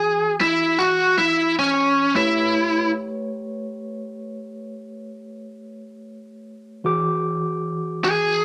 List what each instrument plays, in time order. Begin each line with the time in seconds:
Already playing: tine electric piano E3 F#4 G#4 D6, lead electric guitar G#4
0.41 lead electric guitar E4
0.79 lead electric guitar F#4
1.18 lead electric guitar E4
1.59 lead electric guitar C#4
2.15 tine electric piano A3 G4 B4 C#5, lead electric guitar E4
6.84 tine electric piano E3 F#4 G#4 D6
8.04 lead electric guitar G#4